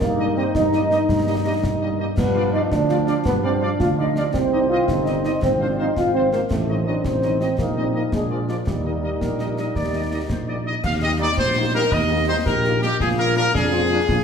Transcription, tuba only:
0.01 0.46 G2 medium
0.55 1.00 G2 medium
1.09 1.54 G2 medium
1.63 2.08 G2 medium
2.18 2.63 G2 medium
2.72 3.17 D2 medium
3.26 3.71 G2 medium
3.80 4.25 D2 medium
4.34 4.79 C2 medium
4.88 5.29 G1 medium
5.42 5.87 G#1 medium
5.97 6.42 G#1 medium
6.51 6.96 A1 medium
7.05 7.50 A1 medium
7.59 8.04 A#1 medium
8.13 8.58 A#1 medium
8.67 9.12 D#2 medium
9.21 9.66 A#1 medium
9.75 10.20 D#2 medium
10.30 10.75 A#1 soft
10.84 11.29 D#2 medium
11.38 11.83 A#1 medium
11.92 12.32 D#2 medium
12.46 12.91 A#1 medium
13.00 13.45 A#1 medium
13.54 14.00 F2 medium
14.09 14.24 A#1 medium

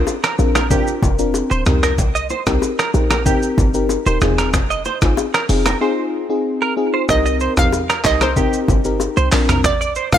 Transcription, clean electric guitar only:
0.24 0.34 A#4 medium
0.56 0.66 A#4 medium
0.71 0.93 G4 medium
1.51 1.62 C5 medium
1.83 1.94 A#4 medium
2.15 2.26 D#5 medium
2.30 2.42 C5 medium
2.79 2.90 A#4 medium
3.11 3.22 A#4 medium
3.26 3.49 G4 medium
4.07 4.17 C5 medium
4.38 4.49 A#4 medium
4.70 4.81 D#5 medium
4.86 4.97 C5 medium
5.34 5.45 A#4 medium
5.66 5.77 A#4 medium
5.81 6.04 C5 medium
6.62 6.73 A#4 medium
6.94 7.05 C5 medium
7.26 7.36 D#5 medium
7.41 7.53 C5 medium
7.90 8.00 A#4 medium
8.21 8.32 A#4 medium
8.37 8.59 G4 medium
9.17 9.28 C5 medium
9.49 9.60 A#4 medium
9.81 9.92 D5 medium
9.96 10.08 C5 medium

